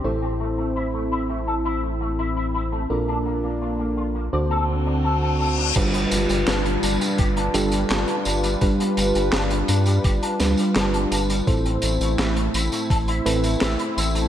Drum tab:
CC |----------------|----------------|x---------------|----------------|
HH |----------------|----------------|xxxxxxxxxxxxxxxx|xxxxxxxxxxxxxxxx|
TB |----------------|----------------|x-xxx-xxx-xxx-xx|x-xxx-xxx-xxx-xx|
CP |----------------|----------------|----x-------x---|----x-------x---|
SD |----------------|----------------|----o-------o---|----o-----o-o---|
BD |----------------|----------------|o-------o-------|o-------o-------|

CC |----------------|
HH |xxxxxxxxxxxxxxxx|
TB |x-xxx-xxx-xxx-xx|
CP |----x-------x---|
SD |----o-------o---|
BD |o-------o-------|